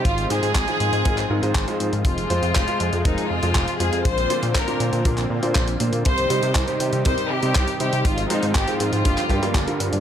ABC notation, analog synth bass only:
X:1
M:4/4
L:1/16
Q:1/4=120
K:Cm
V:1 name="Analog synth bass" clef=bass
A,,,2 A,, A,, A,,, z A,, A,, A,,,2 A,, A,, A,,, z A,, A,, | F,,,2 F,, F,, F,,, z F,, F,, F,,, z F,, F,, F,,, z F,, F,, | B,,,2 B,, B,, B,,, z B,, B,, B,,,2 B,, B,, B,,,2 B,, B,, | C,,2 C, C, C,, z C, C, C,, z C, C, C,, z C, C, |
A,,,2 A,, A,, A,,, z A,, A,, G,,, z G,, G,, G,,, z G,, G,, |]